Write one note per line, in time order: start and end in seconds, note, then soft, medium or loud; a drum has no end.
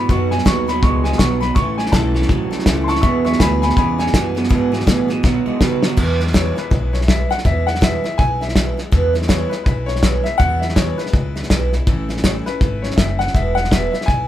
0.09 0.45 F#2 medium
0.09 0.32 B2 medium
0.09 0.29 B2 loud
0.09 0.32 F#3 medium
0.09 0.30 F#3 loud
0.09 0.32 B3 medium
0.09 0.31 D#4 medium
0.09 0.30 F#4 loud
0.09 0.31 C#6 loud
0.09 kick loud
0.09 snare soft
0.31 0.45 B2 medium
0.31 0.45 F#3 medium
0.31 0.45 B3 soft
0.31 0.46 D#4 medium
0.31 0.46 F#4 soft
0.31 0.45 G#5 medium
0.31 snare soft
0.38 snare soft
0.45 0.82 D#2 medium
0.45 0.68 B2 medium
0.45 0.66 B2 medium
0.45 0.68 F#3 medium
0.45 0.66 F#3 medium
0.45 0.68 B3 loud
0.45 0.68 D#4 loud
0.45 0.66 F#4 medium
0.45 0.68 C#6 loud
0.45 kick medium
0.45 snare loud
0.45 hi-hat pedal medium
0.68 0.82 B2 medium
0.68 0.82 F#3 loud
0.68 0.83 B3 soft
0.68 0.83 D#4 medium
0.68 0.83 F#4 medium
0.68 0.82 B5 loud
0.68 snare soft
0.83 1.18 C#2 medium
0.83 1.03 B2 medium
0.83 1.05 F#3 medium
0.83 1.03 G#3 loud
0.83 1.05 B3 medium
0.83 1.05 D#4 medium
0.83 1.04 F#4 medium
0.83 1.04 C#6 loud
0.83 kick loud
0.83 snare soft
1.04 1.18 B2 medium
1.04 1.18 G#3 medium
1.04 1.19 B3 soft
1.04 1.19 D#4 soft
1.04 1.19 F#4 medium
1.04 1.19 G#5 medium
1.04 snare soft
1.12 snare soft
1.18 1.55 B1 medium
1.18 1.40 B2 medium
1.18 1.42 B2 medium
1.18 1.40 F#3 medium
1.18 1.42 F#3 medium
1.18 1.42 B3 medium
1.18 1.41 D#4 medium
1.18 1.40 F#4 medium
1.18 1.40 C#6 medium
1.18 kick medium
1.18 snare loud
1.18 hi-hat pedal medium
1.40 1.55 B2 medium
1.40 1.55 F#3 medium
1.40 1.56 B3 soft
1.40 1.57 D#4 soft
1.40 1.56 F#4 medium
1.40 1.55 B5 medium
1.40 snare soft
1.55 1.92 A1 medium
1.55 1.78 A2 medium
1.55 1.76 A2 medium
1.55 1.79 E3 medium
1.55 1.77 E3 loud
1.55 1.79 A3 medium
1.55 1.78 C#4 loud
1.55 1.77 A4 medium
1.55 1.77 C#6 loud
1.55 kick loud
1.55 snare soft
1.78 1.92 A2 medium
1.78 1.92 E3 medium
1.78 1.92 A3 soft
1.78 1.93 C#4 soft
1.78 1.92 A4 medium
1.78 1.92 G#5 medium
1.78 snare soft
1.86 snare soft
1.92 2.29 B1 loud
1.92 2.15 A2 medium
1.92 2.13 A2 medium
1.92 2.15 E3 loud
1.92 2.13 E3 medium
1.92 2.15 A3 loud
1.92 2.14 C#4 loud
1.92 2.13 A4 loud
1.92 2.64 A5 loud
1.92 kick medium
1.92 snare loud
1.92 hi-hat pedal medium
2.14 2.28 A2 medium
2.14 2.28 E3 medium
2.14 2.29 A3 medium
2.14 2.29 C#4 medium
2.14 2.29 A4 medium
2.14 snare soft
2.22 snare soft
2.29 2.50 A1 medium
2.29 2.50 A2 medium
2.29 2.52 E3 medium
2.29 2.50 F#3 loud
2.29 2.52 A3 medium
2.29 2.51 C#4 medium
2.29 2.49 A4 medium
2.29 kick loud
2.29 snare soft
2.51 2.65 A2 medium
2.51 2.66 F#3 medium
2.51 2.66 A3 medium
2.51 2.66 C#4 medium
2.51 2.66 A4 medium
2.51 muted upright bass stroke soft
2.51 snare soft
2.59 snare soft
2.66 3.02 C#2 medium
2.66 2.89 A2 medium
2.66 2.87 A2 medium
2.66 2.89 E3 medium
2.66 2.87 E3 medium
2.66 2.88 A3 medium
2.66 2.88 C#4 medium
2.66 2.86 A4 medium
2.66 kick medium
2.66 snare loud
2.66 hi-hat pedal medium
2.84 3.03 A4 medium
2.84 3.02 A5 medium
2.84 2.86 C6 medium
2.89 3.02 A2 medium
2.89 3.02 E3 medium
2.89 3.03 A3 soft
2.89 3.03 C#4 medium
2.89 3.00 C#6 loud
2.89 snare soft
2.95 snare soft
3.01 3.25 E2 medium
3.01 3.39 E2 medium
3.01 3.24 E2 medium
3.01 3.25 B2 medium
3.01 3.24 B2 medium
3.01 3.25 E3 loud
3.01 3.25 G#3 medium
3.01 3.24 B3 medium
3.01 3.23 G#4 medium
3.01 3.23 E5 medium
3.01 3.23 C#6 loud
3.01 kick loud
3.01 snare soft
3.24 3.39 E2 medium
3.24 3.39 B2 medium
3.24 3.39 E3 soft
3.24 3.40 G#3 soft
3.24 3.40 B3 medium
3.24 3.40 G#4 medium
3.24 3.39 E5 medium
3.24 3.39 C#6 medium
3.24 snare soft
3.33 snare soft
3.39 3.76 D2 loud
3.39 3.63 E2 medium
3.39 3.60 E2 medium
3.39 3.63 B2 medium
3.39 3.61 B2 medium
3.39 3.63 E3 medium
3.39 3.63 G#3 loud
3.39 3.62 B3 medium
3.39 3.61 G#4 loud
3.39 3.60 G#5 medium
3.39 3.61 B5 loud
3.39 kick medium
3.39 snare loud
3.39 hi-hat pedal medium
3.62 3.76 E2 medium
3.62 3.76 B2 medium
3.62 3.76 E3 soft
3.62 3.76 G#3 medium
3.62 3.77 B3 medium
3.62 3.77 G#4 medium
3.62 3.75 G#5 medium
3.62 3.75 B5 loud
3.62 snare soft
3.69 snare soft
3.76 3.97 E2 medium
3.76 4.13 E2 medium
3.76 3.97 C#3 loud
3.76 3.99 E3 medium
3.76 3.99 G#3 medium
3.76 3.98 B3 medium
3.76 3.97 G#4 medium
3.76 3.97 G#5 medium
3.76 3.98 B5 loud
3.76 kick loud
3.76 snare soft
3.98 4.13 E2 medium
3.98 4.13 C#3 medium
3.98 4.13 E3 soft
3.98 4.13 G#3 soft
3.98 4.13 B3 medium
3.98 4.13 G#4 medium
3.98 4.71 G#5 loud
3.98 snare soft
4.07 snare soft
4.14 4.36 E2 medium
4.14 4.34 E2 medium
4.14 4.50 F#2 medium
4.14 4.36 B2 medium
4.14 4.34 B2 medium
4.14 4.36 E3 medium
4.14 4.35 G#3 medium
4.14 4.35 B3 medium
4.14 4.33 G#4 medium
4.14 kick medium
4.14 snare loud
4.14 hi-hat pedal medium
4.35 4.49 E2 medium
4.35 4.49 B2 medium
4.35 4.49 E3 soft
4.35 4.49 G#3 medium
4.35 4.49 B3 soft
4.35 4.49 G#4 medium
4.35 snare soft
4.44 snare soft
4.49 4.72 E2 loud
4.49 4.71 E2 medium
4.49 4.86 G#2 medium
4.49 4.72 B2 loud
4.49 4.71 B2 loud
4.49 4.73 E3 loud
4.49 4.72 G#3 loud
4.49 4.71 B3 loud
4.49 4.70 G#4 loud
4.49 kick loud
4.49 snare soft
4.72 4.86 E2 medium
4.72 4.86 B2 loud
4.72 4.86 E3 soft
4.72 4.86 G#3 medium
4.72 4.86 B3 medium
4.72 4.87 G#4 medium
4.72 snare soft
4.80 snare soft
4.86 5.09 E2 medium
4.86 5.08 E2 medium
4.86 5.23 A2 medium
4.86 5.09 B2 medium
4.86 5.08 B2 medium
4.86 5.10 E3 loud
4.86 5.09 G#3 loud
4.86 5.08 B3 loud
4.86 5.07 G#4 loud
4.86 kick medium
4.86 snare loud
4.86 hi-hat pedal medium
5.08 5.23 E2 medium
5.08 5.23 B2 loud
5.08 5.23 E3 medium
5.08 5.24 G#3 medium
5.08 5.23 B3 medium
5.08 5.24 G#4 medium
5.08 snare soft
5.23 5.45 B2 medium
5.23 5.44 B2 loud
5.23 5.46 F#3 medium
5.23 5.45 F#3 loud
5.23 5.47 B3 medium
5.23 5.46 D#4 medium
5.23 5.45 F#4 medium
5.23 kick loud
5.23 snare medium
5.46 5.59 B2 medium
5.46 5.59 G#3 medium
5.46 5.60 B3 medium
5.46 5.61 D#4 medium
5.46 5.61 F#4 medium
5.46 muted upright bass stroke soft
5.61 5.83 B2 medium
5.61 5.81 B2 medium
5.61 5.97 C#3 medium
5.61 5.84 F#3 medium
5.61 5.81 F#3 loud
5.61 5.84 B3 loud
5.61 5.83 D#4 loud
5.61 5.82 F#4 medium
5.61 kick medium
5.61 snare loud
5.61 hi-hat pedal medium
5.83 5.96 B2 medium
5.83 5.97 F#3 medium
5.83 5.97 B3 medium
5.83 5.98 D#4 medium
5.83 5.98 F#4 medium
5.83 snare medium
5.97 6.20 E2 medium
5.97 6.49 E2 medium
5.97 6.20 B2 loud
5.97 6.20 E3 loud
5.97 6.20 G#3 medium
5.97 6.19 B3 medium
5.97 6.18 E4 loud
5.97 kick loud
5.97 snare soft
5.97 crash medium
6.19 6.33 E3 medium
6.19 6.33 G#3 medium
6.19 6.33 B3 medium
6.19 6.33 E4 medium
6.19 snare soft
6.27 snare soft
6.33 6.56 E2 medium
6.33 6.56 B2 medium
6.33 6.56 E3 medium
6.33 6.56 G#3 medium
6.33 6.55 B3 medium
6.33 6.54 E4 medium
6.33 6.56 C#5 medium
6.33 kick medium
6.33 snare loud
6.33 hi-hat pedal medium
6.56 6.69 E3 soft
6.56 6.70 G#3 medium
6.56 6.71 B3 medium
6.56 6.71 E4 medium
6.56 6.96 B4 medium
6.56 snare soft
6.71 7.23 B1 medium
6.71 6.93 E3 medium
6.71 6.93 G#3 medium
6.71 6.93 B3 medium
6.71 6.92 E4 medium
6.71 kick loud
6.71 snare soft
6.93 7.07 E3 soft
6.93 7.07 G#3 soft
6.93 7.08 B3 soft
6.93 7.08 E4 medium
6.93 6.98 C#5 medium
6.93 snare soft
7.01 snare soft
7.08 7.30 E2 medium
7.08 7.31 B2 medium
7.08 7.31 E3 medium
7.08 7.30 G#3 medium
7.08 7.30 B3 medium
7.08 7.29 E4 medium
7.08 7.31 E5 loud
7.08 kick medium
7.08 snare loud
7.08 hi-hat pedal medium
7.30 7.44 E3 soft
7.30 7.44 G#3 soft
7.30 7.44 B3 medium
7.30 7.45 E4 medium
7.30 7.36 F#5 loud
7.30 snare soft
7.38 snare soft
7.45 7.67 E2 medium
7.45 7.97 E2 medium
7.45 7.68 B2 medium
7.45 7.68 E3 medium
7.45 7.67 G#3 loud
7.45 7.67 B3 loud
7.45 7.66 E4 medium
7.45 7.68 E5 loud
7.45 kick loud
7.45 snare soft
7.67 7.81 E3 soft
7.67 7.81 G#3 soft
7.67 7.81 B3 medium
7.67 7.81 E4 medium
7.67 7.82 F#5 medium
7.67 snare soft
7.75 snare soft
7.81 8.04 E2 loud
7.81 8.04 B2 medium
7.81 8.04 E3 medium
7.81 8.04 G#3 loud
7.81 8.03 B3 medium
7.81 8.03 E4 medium
7.81 8.02 E5 loud
7.81 kick medium
7.81 snare loud
7.81 hi-hat pedal medium
8.04 8.17 E3 soft
8.04 8.18 G#3 medium
8.04 8.19 B3 medium
8.04 8.19 E4 medium
8.04 8.19 E5 medium
8.04 snare soft
8.18 8.71 B1 medium
8.18 8.41 E3 medium
8.18 8.42 G#3 medium
8.18 8.41 B3 medium
8.18 8.40 E4 medium
8.18 8.41 G#5 loud
8.18 kick loud
8.18 snare soft
8.41 8.55 E3 soft
8.41 8.55 G#3 soft
8.41 8.56 B3 medium
8.41 8.56 E4 medium
8.41 8.75 E5 medium
8.41 snare soft
8.49 snare soft
8.55 8.78 E2 medium
8.55 8.78 B2 medium
8.55 8.78 E3 medium
8.55 8.78 G#3 medium
8.55 8.77 B3 medium
8.55 8.76 E4 medium
8.55 kick medium
8.55 snare loud
8.55 hi-hat pedal medium
8.77 8.91 E3 soft
8.77 8.91 G#3 medium
8.77 8.92 B3 soft
8.77 8.92 E4 medium
8.77 snare soft
8.92 9.14 E2 medium
8.92 9.44 E2 medium
8.92 9.15 B2 medium
8.92 9.14 E3 loud
8.92 9.14 G#3 loud
8.92 9.13 B3 loud
8.92 9.12 E4 loud
8.92 kick loud
8.92 snare soft
9.13 9.28 E3 medium
9.13 9.28 G#3 medium
9.13 9.29 B3 medium
9.13 9.29 E4 medium
9.13 snare soft
9.22 snare soft
9.28 9.51 E2 medium
9.28 9.52 B2 medium
9.28 9.52 E3 medium
9.28 9.51 G#3 medium
9.28 9.51 B3 medium
9.28 9.50 E4 medium
9.28 9.52 C#5 medium
9.28 kick medium
9.28 snare loud
9.28 hi-hat pedal medium
9.49 9.65 E3 medium
9.49 9.66 G#3 soft
9.49 9.67 B3 medium
9.49 9.66 E4 medium
9.49 9.62 B4 medium
9.49 snare soft
9.64 10.18 B1 medium
9.64 9.89 E3 medium
9.64 9.89 G#3 medium
9.64 9.88 B4 medium
9.64 kick loud
9.64 snare soft
9.68 9.88 B3 medium
9.68 9.87 E4 medium
9.86 10.02 G#3 soft
9.86 10.02 B3 medium
9.86 10.03 E4 medium
9.86 10.26 C#5 loud
9.86 snare soft
9.90 10.02 E3 soft
9.96 snare soft
10.02 10.25 E2 medium
10.02 10.25 B2 medium
10.02 10.25 E3 medium
10.02 10.25 G#3 medium
10.02 10.24 B3 medium
10.02 10.24 E4 medium
10.02 kick medium
10.02 snare loud
10.02 hi-hat pedal medium
10.23 10.39 E3 soft
10.23 10.40 G#3 soft
10.23 10.40 B3 medium
10.23 10.40 E4 soft
10.23 10.40 E5 loud
10.23 snare soft
10.38 10.91 E2 medium
10.38 10.62 E2 medium
10.38 10.63 B2 medium
10.38 10.63 E3 medium
10.38 10.62 G#3 medium
10.38 10.62 B3 medium
10.38 10.61 E4 medium
10.38 10.62 F#5 loud
10.38 kick loud
10.38 snare soft
10.59 10.76 B3 medium
10.59 10.76 E4 soft
10.59 10.76 E5 medium
10.59 snare soft
10.64 10.75 E3 soft
10.64 10.76 G#3 soft
10.69 snare soft
10.75 10.99 E2 medium
10.75 10.99 B2 medium
10.75 10.99 E3 loud
10.75 10.98 G#3 medium
10.75 10.98 B3 medium
10.75 10.97 E4 medium
10.75 10.99 C#5 loud
10.75 kick medium
10.75 snare loud
10.75 hi-hat pedal medium
10.98 11.12 E3 soft
10.98 11.13 G#3 soft
10.98 11.14 B3 medium
10.98 11.13 E4 medium
10.98 11.68 B4 medium
10.98 snare soft
11.06 snare soft
11.13 11.45 C#2 medium
11.13 11.36 E3 medium
11.13 11.36 G#3 medium
11.13 11.35 B3 medium
11.13 11.34 E4 medium
11.13 kick loud
11.13 snare soft
11.35 11.50 E3 soft
11.35 11.50 G#3 soft
11.35 11.50 B3 medium
11.35 11.50 E4 medium
11.35 snare soft
11.43 snare soft
11.50 11.82 B1 medium
11.50 11.73 E2 medium
11.50 11.73 B2 medium
11.50 11.73 E3 medium
11.50 11.73 G#3 medium
11.50 11.72 B3 medium
11.50 11.71 E4 medium
11.50 kick medium
11.50 snare loud
11.50 hi-hat pedal medium
11.73 11.86 E3 soft
11.73 11.87 G#3 medium
11.73 11.87 B3 medium
11.73 11.87 E4 medium
11.73 snare soft
11.87 12.39 A1 medium
11.87 12.09 A2 medium
11.87 12.09 E3 medium
11.87 12.10 A3 loud
11.87 12.09 C#4 loud
11.87 12.07 E4 loud
11.87 kick loud
11.87 snare soft
12.09 12.23 A3 soft
12.09 12.23 C#4 medium
12.09 12.24 E4 medium
12.09 snare soft
12.17 snare soft
12.24 12.46 A2 medium
12.24 12.46 E3 medium
12.24 12.47 A3 medium
12.24 12.46 C#4 medium
12.24 12.45 E4 loud
12.24 12.29 C#5 medium
12.24 kick medium
12.24 snare loud
12.24 hi-hat pedal medium
12.46 12.60 A3 soft
12.46 12.61 C#4 medium
12.46 12.61 E4 medium
12.46 12.84 B4 loud
12.46 snare soft
12.61 12.92 G#1 medium
12.61 12.83 E3 medium
12.61 12.84 A3 medium
12.61 12.83 C#4 medium
12.61 12.82 E4 medium
12.61 kick loud
12.61 snare soft
12.82 12.98 A3 soft
12.82 12.98 C#4 medium
12.82 12.98 E4 soft
12.82 12.98 C#5 medium
12.82 snare soft
12.91 snare soft
12.96 13.29 F#1 medium
12.96 13.20 A2 medium
12.96 13.20 E3 medium
12.96 13.21 A3 medium
12.96 13.20 C#4 medium
12.96 13.19 E4 medium
12.96 13.18 E5 medium
12.96 kick medium
12.96 snare loud
12.96 hi-hat pedal medium
13.19 13.36 A3 soft
13.19 13.35 C#4 medium
13.19 13.35 E4 medium
13.19 13.35 F#5 loud
13.19 snare soft
13.27 snare soft
13.34 13.86 E1 medium
13.34 13.57 E2 medium
13.34 13.57 B2 medium
13.34 13.58 E3 medium
13.34 13.58 G#3 medium
13.34 13.57 B3 medium
13.34 13.57 E4 medium
13.34 13.57 E5 loud
13.34 kick loud
13.34 snare soft
13.55 13.72 B3 medium
13.55 13.72 E4 medium
13.55 13.71 F#5 loud
13.55 snare soft
13.59 13.72 E3 soft
13.59 13.72 G#3 medium
13.64 snare soft
13.71 13.94 E2 medium
13.71 13.94 B2 medium
13.71 13.94 E3 medium
13.71 13.93 G#3 medium
13.71 13.93 B3 medium
13.71 13.92 E4 loud
13.71 13.90 E5 loud
13.71 kick medium
13.71 snare loud
13.71 hi-hat pedal medium
13.91 14.07 E3 soft
13.91 14.07 G#3 medium
13.91 14.08 B3 medium
13.91 14.08 E4 medium
13.91 14.08 E5 loud
13.91 snare soft
14.01 snare soft
14.06 14.28 B1 medium
14.06 14.28 E3 medium
14.06 14.28 G#3 medium
14.06 14.28 B3 medium
14.06 14.28 E4 medium
14.06 14.28 G#5 loud
14.06 kick loud
14.06 snare soft